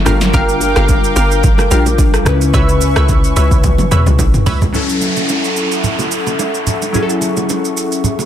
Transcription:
0.04 log drum bass G1, synth keys G3 D4 F4 A#4, synth stab G4 A#4 F5, analog synth pad A#4 F5 G5 D6, cross-stick, low conga, shaker
0.21 snare, high bongo, shaker
0.33 log drum bass G1, synth stab G4 A#4 F5, kick, low conga, shaker
0.49 shaker
0.60 low bongo, shaker
0.76 log drum bass G1, synth stab G4 A#4 F5, cross-stick, low bongo, shaker
0.89 kick, high bongo, shaker
1.04 shaker
1.16 log drum bass G1, synth stab G4 A#4 F5, shaker
1.31 shaker
1.43 kick, low conga, shaker
1.58 cross-stick, high bongo, low bongo, shaker
1.71 log drum bass A#1, synth keys G3 D4 F4 A#4, synth stab G4 A#4 F5, shaker
1.86 low bongo, shaker
1.98 kick, high bongo, shaker
2.14 cross-stick, shaker
2.25 log drum bass C#2, synth keys C#3 C#4 E4 B4, analog synth pad B4 E5 G#5 C#6, cross-stick, low conga, shaker
2.41 high bongo, shaker
2.54 log drum bass C#2, synth stab B4 C#5 E5, kick, low conga, shaker
2.69 shaker
2.80 low bongo, shaker
2.96 log drum bass C#2, synth stab B4 C#5 E5, cross-stick, low bongo, shaker
3.09 kick, high bongo, shaker
3.24 shaker
3.36 log drum bass C#2, synth stab B4 C#5 E5, shaker
3.51 kick, shaker
3.63 log drum bass C#2, kick, high tom, low conga, shaker
3.78 high tom, high bongo, low bongo, shaker
3.91 log drum bass E2, synth stab B4 C#5 E5, mid tom, shaker
4.06 log drum bass C#2, mid tom, low bongo, shaker
4.19 log drum bass B1, kick, high bongo, shaker
4.34 mid tom, shaker
4.46 log drum bass C#2, synth stab B4 C#5 E5, floor tom, open hi-hat, low conga, shaker
4.62 log drum bass C#2, floor tom, high bongo, shaker
4.73 synth keys F#3 C#4 E4 A4, analog synth pad A4 E5 F#5 C#6, downlifter, low conga, shaker
4.89 shaker
5.01 low bongo, shaker
5.17 low bongo, shaker
5.29 high bongo, shaker
5.44 shaker
5.57 shaker
5.72 shaker
5.84 low conga, shaker
5.99 low bongo, shaker
6.12 shaker
6.27 low bongo, shaker
6.39 high bongo, shaker
6.54 shaker
6.67 low conga, shaker
6.82 high bongo, shaker
6.93 synth keys F#3 C#4 E4 G#4, low conga, shaker
7.03 synth keys A4
7.10 shaker
7.21 low bongo, shaker
7.37 low bongo, shaker
7.49 high bongo, shaker
7.65 shaker
7.77 shaker
7.92 shaker
8.04 low conga, shaker
8.19 low bongo, shaker

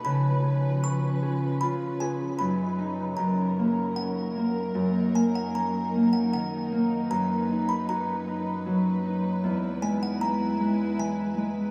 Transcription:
Already playing: harp B2 C#4 D#4 F#4 A4, string section B4
0.05 harp C#3, string section F3 C#4, music box B5
0.44 harp G#4
0.83 harp B4, music box C#6
1.22 harp G#4
1.61 harp F4, music box B5
2.00 harp G#4, music box G#5
2.39 harp F#2, string section F#3 D#4, music box B5
2.78 harp D#4
3.17 harp F#2, string section C#4 A#4, music box A#5
3.59 harp A#3
3.96 harp C#4, music box F#5
4.37 harp A#3
4.75 harp F#2, string section D#4
5.15 harp A#3, music box G#5
5.35 music box F#5
5.55 harp C#4, music box A#5
5.95 harp A#3
6.13 music box F#5
6.33 harp D#3, music box F#5
6.72 harp A#3
7.11 harp F#2, string section B4, music box A#5
7.49 harp D#4
7.69 music box B5
7.89 harp F#4, music box A#5
8.28 harp D#4
8.66 harp F#3
9.06 harp D#4
9.42 harp E2, string section G#3 E4
9.82 harp G#3, music box G#5
10.03 music box F#5
10.20 harp B3, music box A#5
10.60 harp G#3
10.98 harp E3, music box G#5
11.37 harp G#3

